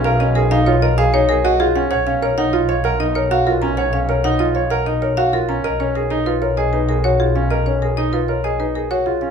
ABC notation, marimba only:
X:1
M:6/4
L:1/8
Q:1/4=193
K:Blyd
V:1 name="Marimba"
e d A e c d e c A d G f | f e c f d e f d c e A a | f e c f d e f d c e A a | d c A d B c d B A c G e |
d c A d B c d B A c G e |]